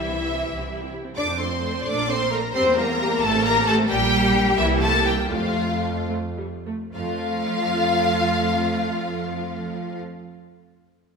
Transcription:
Already playing: C2 E3 E4 E5
0.00 G4
0.10 C4 E4
0.22 E4 G4
0.34 C4 E4
0.46 C2 E4 G4
0.59 C4 E4
0.71 E4 G4
0.82 C4 E4
0.93 E4 G4
1.05 C4 E4
1.16 F2 A3 D4 A4 D5 D6
1.27 C4 C5
1.39 A3 C4 A4 C5 C6
1.50 C4 C5
1.62 A3 A4
1.74 C4 C5
1.85 A#1 A3 D4 A4 D5 D6
1.98 A#3 A#4
2.08 A3 C4 A4 C5 C6
2.20 A#3 A#4
2.31 A3 A#3 A4 A#4 A#5
2.43 A#3 A#4
2.54 E2 G3 C4 G4 C5 C6
2.66 A#3 E4
2.77 G3 A#3 G4 A#4 A#5
2.88 A#3 E4
3.00 G3 G4
3.11 A#3 E4
3.22 A1 A3 G4 A4 A5
3.34 C4 A4
3.44 A3 A#3 G4 A#4 A#5
3.56 C4 A4
3.66 A3 G4 A4 A5
3.79 C4 A4
3.89 A#1 G3 A#3 G4 G5
4.57 C2 E3 A#3 E4 G4 E5
4.82 A3 A4 A5
5.06 G3 G4 G5
5.30 F2 F3 A3 F4 F5
6.09 A3
6.37 G3
6.66 A3
6.93 F2 F3 A3 F4 F5

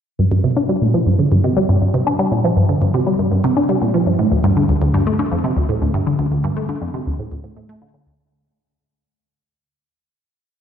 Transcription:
0.19 G2
0.32 G2
0.44 C3
0.57 D4
0.69 G3
0.82 A#2
0.94 F3
1.07 G2
1.19 D3
1.32 G2
1.44 C3
1.57 G3
1.69 G2
1.82 G2
1.94 C3
2.07 D4
2.19 G3
2.32 A#2
2.44 F3
2.57 G2
2.69 D3
2.82 G2
2.94 C3
3.07 G3
3.19 G2
3.32 G2
3.44 C3
3.57 D4
3.69 G3
3.82 A#2
3.94 F3
4.07 G2
4.19 A2
4.32 D2
4.44 G2
4.57 D3
4.69 D2
4.82 D2
4.94 G2
5.07 A3
5.19 D3
5.32 F2
5.44 C3
5.57 D2
5.69 A2
5.82 D2
5.94 G2
6.07 D3
6.19 D2
6.32 D2
6.44 G2
6.57 A3
6.69 D3
6.82 F2
6.94 C3
7.07 D2
7.19 A2
7.32 D2
7.44 A2
7.57 A2
7.69 A3
7.82 D3
7.94 D3
8.07 D2

